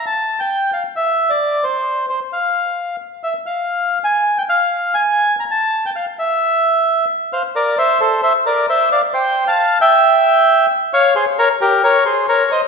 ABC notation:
X:1
M:4/4
L:1/16
Q:1/4=132
K:Aphr
V:1 name="Bandoneon"
a3 g3 f2 e3 d3 c2- | c2 c2 f6 z2 e2 f2- | f3 _a3 g f4 a4 b | a3 g f2 e8 z2 |
[cf]2 [Bd]2 [ce]2 [Ac]2 [ce]2 [Bd]2 [ce]2 [df]2 | [cg]3 [fa]3 [eg]8 z2 | [_df]2 [_Ac]2 [Bd]2 [GB]2 [Bd]2 [Ac]2 [Bd]2 [c_e]2 |]